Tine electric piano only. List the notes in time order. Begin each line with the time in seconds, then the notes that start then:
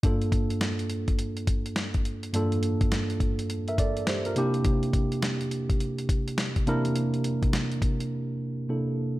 0.03 G2 A#3 D4 F4 A4
2.33 G2 A#3 D4 F4 A4
3.69 A#4 E5
3.79 A4 D5
4.08 G4 C5
4.26 F4 A#4
4.36 C3 A#3 D4 E4 G4
6.66 C3 A#3 D4 E4 A#4
8.69 C3 A#3 D4 E4 A4